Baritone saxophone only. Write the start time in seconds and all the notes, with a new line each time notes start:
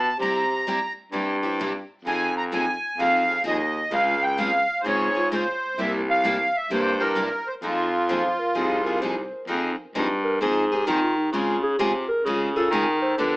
Already playing: B2
0.19 C3
1.12 G2
2.04 F2
2.97 F2
3.44 D#2
3.90 C#2
4.83 G#2
5.77 C2
6.70 G2
7.62 F2
8.55 C2
9.48 F2
9.78 F2
9.95 G2
10.41 G#2
10.87 D#3
11.32 C#3
11.79 C3
12.24 C#3
12.70 D#3
13.18 D3